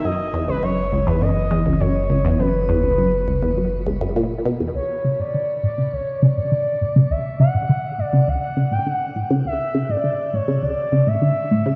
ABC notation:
X:1
M:4/4
L:1/16
Q:1/4=102
K:F#mix
V:1 name="Analog synth lead"
d3 B c3 B d4 c4 | B12 z4 | [K:D] c3 d3 d2 c2 d6 | e2 f4 d2 f3 g f3 z |
e3 d3 c2 d3 e4- e |]
V:2 name="Synth arpeggio sound" clef=bass
F,, z E,, C,, F,, z C,, E,, F,, z E,, C,, F,, z C,, E,, | F,, z E,, C,, F,, z C,, E,, F,, z C,, F,, A,, z B,, E,, | [K:D] D,, z C, A,, D, z A,, C, D,, z C, A,, D, z A,, C, | D,, z C, A,, D, z A,, C, D,, z C, A,, D, z A,, C, |
D,, z C, A,, D, z A,, C, D,, z C, A,, D, z A,, C, |]
V:3 name="Analog synth bass" clef=bass
F,,,16- | F,,,16 | [K:D] z16 | z16 |
z16 |]